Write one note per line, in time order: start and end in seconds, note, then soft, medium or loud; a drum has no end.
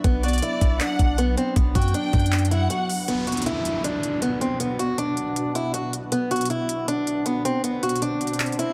0.00 3.04 D4 medium
0.04 0.41 B1 loud
0.04 3.05 F#3 medium
0.04 0.22 B3 medium
0.04 3.05 B3 medium
0.04 kick loud
0.04 closed hi-hat medium
0.23 0.41 F#4 medium
0.23 0.77 D5 medium
0.23 closed hi-hat soft
0.28 closed hi-hat medium
0.33 closed hi-hat medium
0.38 closed hi-hat medium
0.42 0.78 E4 medium
0.42 closed hi-hat medium
0.61 0.80 B1 loud
0.61 kick medium
0.61 closed hi-hat medium
0.80 1.16 D4 medium
0.80 1.16 F#5 loud
0.80 clap loud
0.80 closed hi-hat medium
0.99 1.36 B1 loud
0.99 kick loud
0.99 closed hi-hat medium
1.18 1.36 B3 medium
1.18 closed hi-hat medium
1.37 1.55 C4 medium
1.37 closed hi-hat medium
1.56 1.74 B1 loud
1.56 1.74 B3 medium
1.56 kick loud
1.56 closed hi-hat medium
1.75 1.93 F#2 loud
1.75 1.93 F#4 medium
1.75 2.47 G5 medium
1.75 kick loud
1.75 closed hi-hat medium
1.82 closed hi-hat medium
1.88 closed hi-hat soft
1.94 2.48 D4 medium
1.94 closed hi-hat medium
2.13 2.68 F#2 loud
2.13 kick medium
2.13 closed hi-hat soft
2.20 closed hi-hat medium
2.26 closed hi-hat medium
2.32 clap loud
2.32 closed hi-hat medium
2.39 closed hi-hat medium
2.45 closed hi-hat medium
2.51 2.69 E4 medium
2.51 3.05 F#5 medium
2.51 closed hi-hat medium
2.70 2.88 F#4 medium
2.70 closed hi-hat medium
2.89 open hi-hat medium
3.08 8.73 B2 medium
3.08 3.26 B3 medium
3.08 8.73 B3 medium
3.08 6.09 D4 medium
3.08 6.09 F#4 medium
3.08 closed hi-hat medium
3.08 downlifter medium
3.27 3.45 F#4 medium
3.27 closed hi-hat soft
3.32 closed hi-hat medium
3.37 closed hi-hat medium
3.42 closed hi-hat medium
3.46 3.82 E4 medium
3.46 closed hi-hat medium
3.65 closed hi-hat medium
3.84 4.20 D4 medium
3.84 closed hi-hat medium
4.03 closed hi-hat medium
4.22 4.39 B3 medium
4.22 closed hi-hat medium
4.41 4.58 C4 medium
4.41 closed hi-hat medium
4.60 4.77 B3 medium
4.60 closed hi-hat medium
4.79 4.96 F#4 medium
4.79 closed hi-hat medium
4.98 5.52 D4 medium
4.98 closed hi-hat medium
5.17 closed hi-hat medium
5.36 closed hi-hat medium
5.55 5.72 E4 medium
5.55 closed hi-hat medium
5.74 5.91 F#4 medium
5.74 closed hi-hat medium
5.93 closed hi-hat medium
6.12 6.29 B3 medium
6.12 8.73 D4 medium
6.12 8.73 F#4 medium
6.12 closed hi-hat medium
6.12 swell medium
6.31 6.48 F#4 medium
6.31 closed hi-hat soft
6.36 closed hi-hat medium
6.41 closed hi-hat medium
6.45 closed hi-hat medium
6.50 6.86 E4 medium
6.50 closed hi-hat medium
6.69 closed hi-hat medium
6.88 7.24 D4 medium
6.88 closed hi-hat medium
7.07 closed hi-hat medium
7.26 7.43 B3 medium
7.26 closed hi-hat medium
7.45 7.62 C4 medium
7.45 closed hi-hat medium
7.64 7.81 B3 medium
7.64 closed hi-hat medium
7.83 8.00 F#4 medium
7.83 closed hi-hat medium
7.89 closed hi-hat medium
7.96 closed hi-hat soft
8.02 8.55 D4 medium
8.02 closed hi-hat medium
8.21 closed hi-hat soft
8.27 closed hi-hat soft
8.33 closed hi-hat medium
8.40 clap loud
8.40 closed hi-hat medium
8.46 closed hi-hat medium
8.52 closed hi-hat medium
8.59 8.73 E4 medium
8.59 closed hi-hat medium